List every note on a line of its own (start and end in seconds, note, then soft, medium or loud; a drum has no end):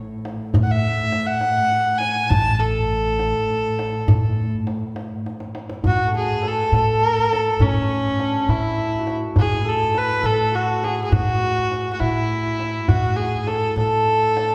0.00 2.30 A2 medium
0.25 tombak tek medium
0.54 1.56 A2 loud
0.54 tombak dum medium
0.63 0.72 F#5 medium
0.71 1.28 E5 medium
1.12 tombak tek medium
1.27 2.00 F#5 loud
1.41 tombak tek medium
1.72 tombak ka soft
1.98 2.31 G#5 loud
1.98 tombak tek medium
2.30 3.32 A1 loud
2.30 5.90 A2 medium
2.30 2.61 A5 loud
2.30 tombak dum medium
2.60 4.51 A4 medium
3.19 tombak tek medium
3.50 tombak ka soft
3.79 tombak tek medium
4.08 5.09 A2 loud
4.08 tombak dum medium
4.67 tombak tek medium
4.96 tombak tek medium
5.26 tombak tek medium
5.40 tombak ka medium
5.55 tombak tek medium
5.69 tombak ka medium
5.84 6.60 A2 medium
5.84 8.98 F#4 medium
5.84 6.13 F#4 medium
5.84 tombak dum medium
6.06 6.20 A4 soft
6.14 6.47 G#4 medium
6.14 6.49 G#4 medium
6.36 9.09 B4 medium
6.41 6.72 A4 medium
6.41 tombak tek medium
6.48 6.75 A4 medium
6.72 7.48 A2 medium
6.72 9.42 A4 medium
6.72 7.63 A4 medium
6.72 tombak tek medium
7.33 tombak tek medium
7.59 8.36 A2 medium
7.59 8.10 C#4 medium
7.59 8.51 C#4 medium
7.59 tombak dum medium
8.19 8.41 D4 medium
8.19 tombak tek medium
8.41 12.15 D4 medium
8.48 9.24 A2 medium
8.48 11.97 E4 medium
8.48 9.15 E4 medium
8.48 tombak tek medium
8.99 10.51 F#4 medium
9.07 tombak tek medium
9.36 10.12 A2 medium
9.36 9.70 G#4 medium
9.36 tombak dum loud
9.64 10.21 A4 medium
9.69 9.99 A4 medium
9.94 12.68 B4 medium
9.94 10.28 B4 loud
9.94 tombak tek medium
10.21 11.00 A2 medium
10.21 10.87 A4 medium
10.21 tombak tek medium
10.26 10.57 A4 medium
10.52 11.10 F#4 medium
10.52 10.85 F#4 medium
10.81 13.19 G#4 medium
10.81 11.04 G#4 medium
10.81 tombak tek medium
11.04 11.14 G#4 medium
11.10 11.88 A2 medium
11.10 11.92 F#4 medium
11.10 11.93 F#4 loud
11.10 tombak dum medium
11.71 tombak tek medium
11.93 12.89 F#4 soft
11.93 12.01 F#4 medium
12.00 12.77 A2 medium
12.00 12.90 E4 medium
12.00 12.61 E4 medium
12.00 tombak tek medium
12.60 14.55 E4 medium
12.60 tombak tek medium
12.88 13.65 A2 medium
12.88 13.18 F#4 medium
12.88 14.55 F#4 medium
12.88 tombak dum medium
13.16 13.49 G#4 medium
13.16 13.86 G#4 medium
13.47 13.77 A4 medium
13.47 tombak tek medium
13.76 14.52 A2 medium
13.76 14.55 A4 medium
13.76 tombak tek medium
14.37 14.55 D4 medium
14.37 tombak tek medium